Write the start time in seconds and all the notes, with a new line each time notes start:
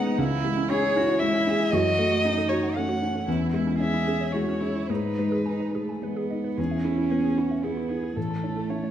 Already playing: G#2 G#3 B3 D#4 G#4 F#5
0.06 B4
0.18 C#2 C#4 E4
0.44 G#3 E4
0.57 C#4
0.69 C#4 G#4 C#5
0.83 E4
0.96 C#4 E4 F#4
1.09 C#5
1.19 G#3 E4 E5
1.34 C#4
1.47 C#4 G#4
1.60 E4
1.71 F#2 F#4 D#5
1.99 A3 A4
2.11 F#4
2.25 C#4 D#4 F#5
2.38 A4
2.49 F#4 C#5
2.63 F#5
2.76 A3 C#4 A4 F#5
2.89 F#4
3.02 C#4 C#5
3.15 A4
3.28 E2 C#4 E4
3.53 G#3 E4
3.67 C#4
3.80 C#4 G#4 C#5 E5
3.94 E4
4.07 C#4 G#4
4.21 C#5
4.33 G#3 E4 F#4 C#5
4.48 C#4
4.61 C#4 E4 G#4
4.76 E4
4.89 G#2 D#4 G#4 B4
5.18 G#3 B4
5.32 G#4
5.46 D#4 G#5
5.60 B4
5.74 A3 G#4
5.89 G#5
6.02 G#3 B3 B4
6.16 G#4
6.30 D#4 D#5
6.44 B4
6.57 E2 C#4 E4 G#4
6.71 E5
6.83 E4 G#4
6.98 E4
7.10 B3 G#4 B4
7.24 G#4
7.37 E4 F#4
7.51 E5
7.63 B3 E4 G#4
7.77 E4
7.89 E4 G#4
8.03 G#4
8.16 A1 A3 A4
8.30 A5
8.43 E4 C#5
8.57 A4
8.69 C#4 C#5 E5
8.84 C#5